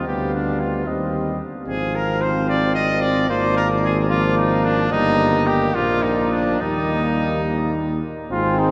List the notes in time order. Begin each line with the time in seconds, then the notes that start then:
0.07 D2 G3 B3 G4 F5
0.34 D4
0.60 F4
0.87 D#2 G3 C4 D#5
1.68 G#1 F3 C4 G#4 F5
1.95 A#4
2.21 C5
2.49 D5
2.75 D#5
3.01 D5
3.29 G#1 F3 A#3 C5 D5
3.57 A#4
3.84 G#4
4.10 F3 A#3 F4 D5
4.37 D#4
4.64 D4
4.92 G1 G3 A#3 D#4 D#5
5.47 G4
5.74 A#1 F3 A#3 F4 D5
6.03 D#4
6.32 D4
6.60 D#2 G3 A#3 D#4 D#5
8.31 G#1 G#3 C4 F4
8.59 D#4